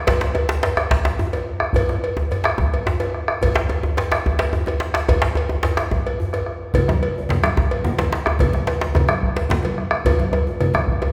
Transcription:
0.07 bombo low medium
0.07 cowbell medium
0.07 djembe slap loud
0.07 djembe bass medium
0.21 bombo rim soft
0.21 djembe slap medium
0.35 cowbell soft
0.35 djembe tone medium
0.49 djembe slap medium
0.49 djembe tone medium
0.63 cowbell soft
0.63 djembe slap medium
0.63 djembe slap soft
0.63 djembe bass medium
0.77 bombo rim medium
0.77 djembe slap medium
0.77 djembe tone medium
0.91 bombo low medium
0.91 djembe slap loud
1.05 djembe slap medium
1.19 djembe tone medium
1.19 djembe bass medium
1.33 cowbell soft
1.33 djembe slap medium
1.33 djembe tone medium
1.47 djembe slap soft
1.60 bombo rim medium
1.73 bombo low medium
1.73 cowbell medium
1.73 djembe bass medium
1.89 bombo rim soft
1.89 djembe slap medium
2.04 cowbell soft
2.17 djembe tone medium
2.31 cowbell soft
2.31 djembe slap soft
2.31 djembe bass medium
2.44 bombo rim medium
2.44 djembe slap medium
2.58 bombo low medium
2.58 djembe tone medium
2.74 cowbell soft
2.86 djembe slap medium
2.86 djembe bass medium
3.00 cowbell soft
3.00 djembe slap medium
3.00 djembe tone medium
3.14 bombo rim soft
3.14 djembe slap soft
3.28 bombo rim medium
3.41 bombo low medium
3.41 cowbell medium
3.41 djembe bass medium
3.55 bombo rim soft
3.55 djembe slap medium
3.69 cowbell soft
3.69 djembe tone medium
3.83 djembe tone medium
3.97 cowbell soft
3.97 djembe slap soft
3.97 djembe slap medium
3.97 djembe bass medium
4.12 bombo rim medium
4.12 djembe slap medium
4.26 bombo low medium
4.26 djembe tone medium
4.39 cowbell soft
4.39 djembe slap medium
4.53 djembe tone medium
4.53 djembe bass medium
4.66 cowbell soft
4.66 djembe slap soft
4.66 djembe tone soft
4.66 djembe tone medium
4.80 bombo rim soft
4.80 djembe slap medium
4.80 djembe slap soft
4.94 bombo rim medium
4.94 djembe slap medium
5.08 bombo rim soft
5.08 bombo low medium
5.08 cowbell medium
5.08 djembe tone medium
5.08 djembe bass medium
5.22 djembe slap medium
5.35 cowbell soft
5.35 djembe slap soft
5.35 djembe tone medium
5.49 djembe tone medium
5.51 djembe tone soft
5.63 cowbell soft
5.63 djembe slap medium
5.63 djembe bass medium
5.77 bombo rim medium
5.77 djembe slap medium
5.79 djembe slap medium
5.91 bombo low medium
5.91 djembe tone medium
6.07 cowbell soft
6.20 djembe bass medium
6.33 bombo rim soft
6.33 cowbell soft
6.33 djembe slap medium
6.33 djembe tone soft
6.46 bombo rim soft
6.74 bombo low medium
6.74 cowbell medium
6.74 high conga soft
6.74 low conga medium
6.74 djembe bass medium
6.88 bombo rim soft
6.88 djembe slap medium
6.88 high conga medium
6.88 djembe tone medium
7.03 cowbell soft
7.16 high conga soft
7.16 djembe tone medium
7.29 djembe slap medium
7.29 djembe slap soft
7.29 low conga medium
7.29 djembe bass medium
7.43 bombo rim medium
7.43 djembe slap medium
7.43 high conga medium
7.46 djembe slap medium
7.57 bombo low medium
7.57 djembe tone medium
7.71 cowbell soft
7.84 low conga medium
7.84 djembe bass medium
7.98 cowbell soft
7.98 djembe slap medium
7.98 high conga medium
7.98 djembe tone medium
8.13 bombo rim soft
8.13 djembe slap medium
8.13 djembe slap soft
8.26 bombo rim medium
8.26 djembe tone medium
8.39 bombo low medium
8.39 cowbell medium
8.39 high conga soft
8.39 low conga medium
8.39 djembe bass medium
8.53 bombo rim soft
8.53 djembe slap medium
8.53 high conga medium
8.67 cowbell soft
8.67 djembe slap medium
8.81 djembe slap medium
8.81 djembe tone medium
8.81 high conga soft
8.94 cowbell soft
8.94 djembe slap soft
8.94 djembe tone loud
8.94 djembe bass medium
8.94 low conga medium
9.08 bombo rim medium
9.08 djembe slap medium
9.08 high conga medium
9.23 bombo low medium
9.36 cowbell soft
9.36 djembe slap medium
9.49 djembe slap medium
9.49 djembe bass medium
9.49 low conga medium
9.63 cowbell soft
9.63 djembe slap soft
9.63 djembe tone soft
9.63 high conga soft
9.78 bombo rim soft
9.91 bombo rim medium
9.91 high conga soft
10.05 bombo low medium
10.05 cowbell medium
10.05 high conga soft
10.05 djembe tone medium
10.05 djembe bass medium
10.05 low conga medium
10.19 bombo rim soft
10.19 djembe slap medium
10.19 high conga medium
10.33 cowbell soft
10.33 djembe tone medium
10.47 djembe tone medium
10.47 high conga soft
10.60 cowbell soft
10.60 djembe slap soft
10.60 low conga medium
10.60 djembe bass medium
10.74 bombo rim medium
10.74 djembe slap medium
10.74 high conga medium
10.74 djembe tone medium
10.88 bombo low medium
11.02 cowbell soft
11.02 djembe tone medium

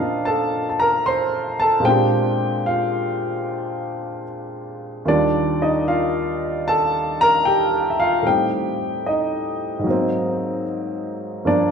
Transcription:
0.00 1.78 A#2 medium
0.00 1.85 F3 medium
0.00 1.85 A#3 soft
0.00 1.83 C4 medium
0.00 1.88 D4 medium
0.00 1.87 D#4 soft
0.00 1.87 F4 medium
0.00 1.87 D5 medium
0.00 1.88 D#5 medium
0.00 0.28 F5 medium
0.25 0.68 A4 medium
0.25 0.67 A5 medium
0.70 0.79 A5 medium
0.80 1.05 A#4 medium
0.80 1.06 A#5 medium
1.06 1.57 C5 medium
1.06 1.56 C6 medium
1.60 1.67 A4 medium
1.60 1.65 A5 medium
1.80 5.03 A#2 medium
1.80 5.04 G#3 medium
1.85 5.05 C4 medium
1.85 5.07 D4 medium
1.85 1.89 G4 medium
1.85 2.61 G5 medium
1.91 5.08 G4 medium
2.66 4.23 F4 medium
2.66 4.22 F5 medium
5.05 8.25 D#2 medium
5.05 8.26 D#3 soft
5.05 8.23 G3 soft
5.05 5.57 D4 medium
5.05 5.87 F4 medium
5.05 5.62 D5 medium
5.62 5.68 D#4 medium
5.62 5.68 D#5 medium
5.88 6.63 F4 medium
5.88 6.69 F5 medium
6.68 7.18 A4 medium
6.68 7.17 A5 loud
7.21 7.46 A#4 medium
7.21 7.45 A#5 loud
7.45 7.88 G4 medium
7.45 7.87 G5 medium
7.90 8.00 E5 medium
8.00 8.25 F4 medium
8.00 8.27 F5 medium
8.22 9.84 A2 medium
8.22 9.85 G3 soft
8.22 9.86 C4 soft
8.27 9.07 D#4 medium
8.27 9.03 G4 medium
8.27 9.09 G5 medium
9.06 10.63 D#4 medium
9.06 10.62 D#5 medium
9.79 11.42 G#2 medium
9.83 11.44 F#3 medium
9.83 11.45 A#3 medium
9.90 11.48 C4 medium
11.45 11.71 G2 medium
11.45 11.71 F3 soft
11.45 11.71 A#3 medium
11.45 11.71 D4 medium
11.45 11.71 D5 medium

